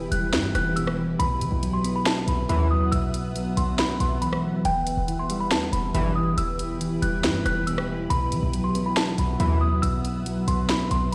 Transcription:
Already playing: E2 B2 E3 E4 G4 B4
0.11 E1 G3 F#6, closed hi-hat
0.33 G2 B3, snare, closed hi-hat
0.55 E1 E2 F#6, cross-stick, closed hi-hat
0.76 B2 E6, closed hi-hat
0.87 cross-stick
0.98 E3
1.19 B1 B2 B3 E5 F#5 B5, closed hi-hat
1.41 F#3, closed hi-hat
1.52 B1
1.62 F#3, closed hi-hat
1.73 C6
1.84 B3, closed hi-hat
1.96 B5
2.06 B4 A5, snare, closed hi-hat
2.28 B1 B2 B5, closed hi-hat
2.49 B1 D#2 F#2 E3 E4 B5, closed hi-hat
2.71 F#3 D#6
2.92 B1 B2 E6, closed hi-hat
3.14 closed hi-hat
3.36 F#3, closed hi-hat
3.56 B1 B3 C6, closed hi-hat
3.79 B4 B5, snare, closed hi-hat
4.00 B1 B2 C6, closed hi-hat
4.22 E3 B5, closed hi-hat
4.33 cross-stick
4.44 F#3
4.65 E1 E2 E3 E4 G4 B4 G5, closed hi-hat
4.87 closed hi-hat
4.97 E1
5.08 E3, closed hi-hat
5.19 C6
5.30 G3, closed hi-hat
5.40 B5
5.51 E2 B3 A5, snare, closed hi-hat
5.73 E1 E2 B5, closed hi-hat
5.95 G1 B1 G2 B2 E3 B5, closed hi-hat
6.16 E3 D#6
6.38 E1 E2 E6, closed hi-hat
6.59 closed hi-hat
6.81 E3, closed hi-hat
7.02 E1 G3 F#6, closed hi-hat
7.24 G2 B3, snare, closed hi-hat
7.46 E1 E2 F#6, cross-stick, closed hi-hat
7.67 B2 E6, closed hi-hat
7.78 cross-stick
7.88 E3
8.10 B1 B2 B3 E5 F#5 B5, closed hi-hat
8.32 F#3, closed hi-hat
8.43 B1
8.53 F#3, closed hi-hat
8.64 C6
8.74 B3, closed hi-hat
8.86 B5
8.97 B4 A5, snare, closed hi-hat
9.18 B1 B2 B5, closed hi-hat
9.40 B1 D#2 F#2 E3 E4 B5, closed hi-hat
9.61 F#3 D#6
9.82 B1 B2 E6, closed hi-hat
10.05 closed hi-hat
10.26 F#3, closed hi-hat
10.47 B1 B3 C6, closed hi-hat
10.69 B4 B5, snare, closed hi-hat
10.90 B1 B2 C6, closed hi-hat

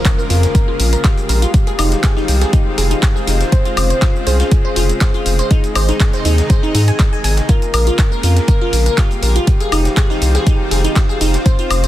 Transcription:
Already playing: C#3 G#3 A#3 F4 A#4, impact
0.05 kick, snare, clap, closed hi-hat, shaker
0.18 A#4, shaker
0.30 F2 F4 A#4, closed hi-hat, open hi-hat, shaker
0.43 snare, closed hi-hat, shaker
0.55 A#4, kick, closed hi-hat, shaker
0.68 F4
0.80 A#1, closed hi-hat, open hi-hat, shaker
0.93 A#4, closed hi-hat, shaker
1.04 F4 G4, kick, snare, clap, closed hi-hat, shaker
1.17 closed hi-hat, shaker
1.29 A#1 A#4, closed hi-hat, open hi-hat, shaker
1.42 F4, closed hi-hat, shaker
1.54 D#3 C4, kick, closed hi-hat, shaker
1.67 G#4, closed hi-hat, shaker
1.79 F1 D#4, closed hi-hat, open hi-hat, high woodblock, shaker
1.92 snare, closed hi-hat, shaker
2.04 G#4, kick, snare, clap, closed hi-hat, shaker
2.17 D#4, snare, shaker
2.28 C2, closed hi-hat, open hi-hat, shaker
2.41 G#4, snare, closed hi-hat, shaker
2.53 D#4, kick, closed hi-hat, shaker
2.78 F1 G#4, closed hi-hat, open hi-hat, shaker
2.91 D#4, closed hi-hat, shaker
3.03 kick, snare, clap, closed hi-hat, shaker
3.16 G#4, shaker
3.27 F1 D#4, closed hi-hat, open hi-hat, shaker
3.41 snare, closed hi-hat, shaker
3.52 C#3 C5, kick, closed hi-hat, shaker
3.65 F4, closed hi-hat, shaker
3.77 F1, closed hi-hat, open hi-hat, high woodblock, shaker
3.90 C5, closed hi-hat, shaker
4.02 F4, kick, snare, clap, closed hi-hat, shaker
4.16 shaker
4.27 C2 G#4 C5, closed hi-hat, open hi-hat, shaker
4.40 F4, snare, closed hi-hat, shaker
4.51 kick, closed hi-hat, shaker
4.65 C5
4.76 F1 F4, closed hi-hat, open hi-hat, shaker
4.89 closed hi-hat, shaker
5.01 G#4 C5, kick, snare, clap, closed hi-hat, shaker
5.14 F4, closed hi-hat, shaker
5.26 F1, closed hi-hat, open hi-hat, shaker
5.39 C5, closed hi-hat, shaker
5.51 C3 D#3 D#4, kick, closed hi-hat, shaker
5.64 closed hi-hat, shaker
5.75 G#1 C5, closed hi-hat, open hi-hat, high woodblock, shaker
5.89 D#4, snare, closed hi-hat, shaker
6.00 kick, snare, clap, closed hi-hat, shaker
6.13 C5, snare, closed hi-hat, shaker
6.25 D#2 D#4, closed hi-hat, open hi-hat, shaker
6.38 snare, closed hi-hat, shaker
6.50 C5, kick, closed hi-hat, shaker
6.63 D#4, shaker
6.75 G#2 D#4, closed hi-hat, open hi-hat, shaker
6.88 G#5, closed hi-hat, shaker
6.99 kick, snare, clap, closed hi-hat, shaker
7.13 G#5, shaker
7.24 G#1 G#5, closed hi-hat, open hi-hat, shaker
7.37 snare, closed hi-hat, shaker
7.49 C#3 A#3 F4 A#4, kick, closed hi-hat, shaker
7.62 closed hi-hat, shaker
7.74 A#1 A#4, closed hi-hat, open hi-hat, high woodblock, shaker
7.87 F4, closed hi-hat, shaker
7.98 kick, snare, clap, closed hi-hat, shaker
8.12 A#4, shaker
8.23 F2 F4 A#4, closed hi-hat, open hi-hat, shaker
8.36 snare, closed hi-hat, shaker
8.48 A#4, kick, closed hi-hat, shaker
8.61 F4
8.73 A#1, closed hi-hat, open hi-hat, shaker
8.86 A#4, closed hi-hat, shaker
8.98 F4 G4, kick, snare, clap, closed hi-hat, shaker
9.11 closed hi-hat, shaker
9.23 A#1 A#4, closed hi-hat, open hi-hat, shaker
9.36 F4, closed hi-hat, shaker
9.47 D#3 C4, kick, closed hi-hat, shaker
9.60 G#4, closed hi-hat, shaker
9.72 F1 D#4, closed hi-hat, open hi-hat, high woodblock, shaker
9.85 snare, closed hi-hat, shaker
9.97 G#4, kick, snare, clap, closed hi-hat, shaker
10.10 D#4, snare, shaker
10.22 C2, closed hi-hat, open hi-hat, shaker
10.35 G#4, snare, closed hi-hat, shaker
10.47 D#4, kick, closed hi-hat, shaker
10.71 F1 G#4, closed hi-hat, open hi-hat, shaker
10.84 D#4, closed hi-hat, shaker
10.96 kick, snare, clap, closed hi-hat, shaker
11.09 G#4, shaker
11.21 F1 D#4, closed hi-hat, open hi-hat, shaker
11.34 snare, closed hi-hat, shaker
11.46 C#3 G#3 C5, kick, closed hi-hat, shaker
11.59 F4, closed hi-hat, shaker
11.70 F1, closed hi-hat, open hi-hat, high woodblock, shaker
11.84 C5, closed hi-hat, shaker

